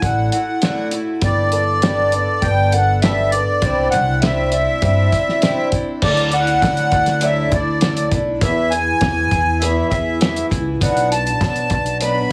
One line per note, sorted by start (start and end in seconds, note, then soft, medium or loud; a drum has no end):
0.02 0.27 A1 medium
0.02 0.33 D3 medium
0.02 0.33 A3 medium
0.02 0.33 E4 medium
0.02 0.32 F#4 medium
0.02 0.30 F#5 medium
0.02 kick loud
0.02 closed hi-hat medium
0.32 0.63 A3 soft
0.32 0.62 E4 soft
0.32 0.63 F#4 medium
0.32 0.88 F#5 medium
0.32 closed hi-hat medium
0.62 0.93 D3 medium
0.62 0.93 A3 medium
0.62 0.93 E4 medium
0.62 0.91 F#4 medium
0.62 snare medium
0.62 closed hi-hat medium
0.91 1.22 A3 soft
0.91 1.23 E4 medium
0.91 1.23 F#4 medium
0.91 closed hi-hat medium
1.22 2.19 G1 medium
1.22 1.53 G3 medium
1.22 1.53 B3 medium
1.22 1.52 D4 medium
1.22 1.51 A4 medium
1.22 2.47 D5 medium
1.22 kick loud
1.22 closed hi-hat medium
1.52 1.82 B3 soft
1.52 1.82 D4 soft
1.52 1.82 A4 medium
1.52 closed hi-hat medium
1.82 2.13 G3 medium
1.82 2.13 B3 medium
1.82 2.13 D4 medium
1.82 2.12 A4 medium
1.82 snare loud
1.82 closed hi-hat medium
2.12 2.43 B3 soft
2.12 2.43 D4 medium
2.12 2.43 A4 medium
2.12 closed hi-hat medium
2.42 3.39 G1 loud
2.42 2.73 G3 medium
2.42 2.74 B3 medium
2.42 2.74 D4 medium
2.42 2.73 A4 medium
2.42 2.74 G5 loud
2.42 kick loud
2.42 closed hi-hat medium
2.72 3.03 D4 medium
2.72 3.04 A4 medium
2.72 3.00 F#5 medium
2.72 closed hi-hat medium
2.76 3.03 B3 soft
3.02 3.33 G3 medium
3.02 3.34 B3 medium
3.02 3.34 D4 medium
3.02 3.32 A4 medium
3.02 3.30 E5 medium
3.02 snare loud
3.02 closed hi-hat medium
3.31 3.63 D4 soft
3.31 3.63 A4 medium
3.31 3.88 D5 medium
3.31 closed hi-hat medium
3.36 3.63 B3 soft
3.62 3.87 C2 medium
3.62 3.93 C3 medium
3.62 3.93 G3 medium
3.62 3.93 C4 medium
3.62 3.93 D4 medium
3.62 3.92 E4 medium
3.62 kick loud
3.62 closed hi-hat medium
3.91 4.66 C2 loud
3.91 4.22 D4 medium
3.91 4.23 E4 medium
3.91 4.20 F#5 loud
3.91 closed hi-hat medium
3.95 4.22 C4 soft
4.22 4.53 C3 medium
4.22 4.53 G3 medium
4.22 4.53 C4 medium
4.22 4.52 D4 medium
4.22 4.51 E4 loud
4.22 4.50 E5 medium
4.22 snare loud
4.22 closed hi-hat medium
4.52 4.81 C4 soft
4.52 4.82 D4 medium
4.52 4.82 E4 medium
4.52 5.68 E5 medium
4.52 closed hi-hat medium
4.82 5.07 G2 loud
4.82 5.12 G3 medium
4.82 5.12 C4 medium
4.82 5.12 D4 medium
4.82 5.11 E4 medium
4.82 kick loud
4.82 closed hi-hat medium
5.12 5.42 C4 soft
5.12 5.42 D4 medium
5.12 5.43 E4 medium
5.12 kick medium
5.12 closed hi-hat medium
5.29 snare soft
5.42 5.73 C3 medium
5.42 5.73 G3 medium
5.42 5.72 C4 medium
5.42 5.71 D4 medium
5.42 5.70 E4 loud
5.42 snare loud
5.42 closed hi-hat medium
5.71 6.02 C4 medium
5.71 6.02 D4 medium
5.71 6.02 E4 medium
5.71 kick medium
5.71 closed hi-hat medium
6.02 6.51 D2 medium
6.02 6.32 D3 medium
6.02 6.33 F#3 medium
6.02 6.32 A3 medium
6.02 6.31 D4 medium
6.02 6.30 E4 medium
6.02 6.34 D5 loud
6.02 kick loud
6.02 crash loud
6.17 closed hi-hat soft
6.32 6.61 A3 soft
6.32 6.62 D4 soft
6.32 6.62 E4 medium
6.32 7.26 F#5 loud
6.32 closed hi-hat medium
6.47 closed hi-hat soft
6.62 6.87 D3 medium
6.62 6.92 F#3 medium
6.62 6.92 A3 medium
6.62 6.92 D4 medium
6.62 6.90 E4 medium
6.62 kick loud
6.62 snare loud
6.62 closed hi-hat medium
6.77 closed hi-hat soft
6.92 7.40 D2 medium
6.92 7.21 A3 soft
6.92 7.21 D4 soft
6.92 7.21 E4 medium
6.92 kick medium
6.92 closed hi-hat medium
7.06 snare soft
7.06 closed hi-hat soft
7.21 7.52 D3 medium
7.21 7.52 F#3 medium
7.21 7.52 A3 medium
7.21 7.51 D4 medium
7.21 7.50 E4 medium
7.21 7.54 E5 medium
7.21 closed hi-hat loud
7.51 8.00 D2 loud
7.51 7.81 A3 soft
7.51 7.82 D4 soft
7.51 7.82 E4 medium
7.51 8.09 D5 medium
7.51 kick medium
7.51 closed hi-hat medium
7.81 8.12 F#3 medium
7.81 8.12 A3 medium
7.81 8.11 D4 medium
7.81 8.10 E4 medium
7.81 snare loud
7.81 closed hi-hat medium
7.97 closed hi-hat soft
8.12 8.36 B1 medium
8.12 8.42 A3 soft
8.12 8.42 D4 soft
8.12 8.42 E4 soft
8.12 kick medium
8.12 closed hi-hat medium
8.41 8.72 E2 medium
8.41 8.90 E2 loud
8.41 8.72 B2 medium
8.41 8.72 E3 medium
8.41 8.72 B3 medium
8.41 8.71 E4 medium
8.41 8.70 G#4 medium
8.41 8.73 E5 medium
8.41 kick loud
8.41 closed hi-hat loud
8.71 9.00 E3 soft
8.71 9.01 B3 soft
8.71 9.01 E4 soft
8.71 9.02 G#4 medium
8.71 9.64 G#5 loud
8.71 closed hi-hat medium
9.01 9.26 E2 medium
9.01 9.31 E3 medium
9.01 9.31 B3 medium
9.01 9.31 E4 medium
9.01 9.30 G#4 medium
9.01 kick loud
9.01 snare loud
9.01 closed hi-hat loud
9.31 9.80 E2 medium
9.31 9.61 E3 soft
9.31 9.61 B3 soft
9.31 9.61 E4 medium
9.31 9.61 G#4 medium
9.31 kick medium
9.31 closed hi-hat medium
9.60 9.91 E2 medium
9.60 9.92 B2 medium
9.60 9.92 E3 medium
9.60 9.91 B3 medium
9.60 9.91 E4 medium
9.60 9.90 G#4 medium
9.60 9.87 E5 medium
9.60 closed hi-hat loud
9.89 10.40 E2 medium
9.89 10.20 B3 medium
9.89 10.20 E4 medium
9.89 10.21 G#4 medium
9.89 10.46 E5 medium
9.89 kick medium
9.89 closed hi-hat medium
10.20 10.51 E3 medium
10.20 10.50 B3 medium
10.20 10.50 E4 medium
10.20 10.49 G#4 medium
10.20 snare loud
10.20 closed hi-hat loud
10.36 closed hi-hat soft
10.50 10.76 C#2 medium
10.50 10.81 E3 soft
10.50 10.81 B3 soft
10.50 10.81 E4 medium
10.50 10.81 G#4 medium
10.50 kick medium
10.50 closed hi-hat medium
10.81 11.30 B1 loud
10.81 11.11 B2 medium
10.81 11.11 F#3 medium
10.81 11.12 B3 medium
10.81 11.11 D4 medium
10.81 11.10 F#4 medium
10.81 11.09 F#5 medium
10.81 kick loud
10.81 closed hi-hat loud
10.97 closed hi-hat soft
11.11 11.40 B3 soft
11.11 11.41 D4 soft
11.11 11.41 F#4 medium
11.11 11.98 A5 loud
11.11 closed hi-hat medium
11.27 closed hi-hat soft
11.40 11.65 B2 medium
11.40 11.71 F#3 medium
11.40 11.71 B3 medium
11.40 11.71 D4 medium
11.40 11.69 F#4 medium
11.40 kick loud
11.40 snare loud
11.40 closed hi-hat loud
11.56 closed hi-hat soft
11.70 12.19 B1 medium
11.70 12.00 B3 soft
11.70 12.01 D4 medium
11.70 12.01 F#4 medium
11.70 kick medium
11.70 closed hi-hat medium
11.86 closed hi-hat soft
12.01 12.31 B2 medium
12.01 12.31 F#3 medium
12.01 12.31 B3 medium
12.01 12.30 D4 medium
12.01 12.30 F#4 medium
12.01 12.32 B5 loud
12.01 closed hi-hat medium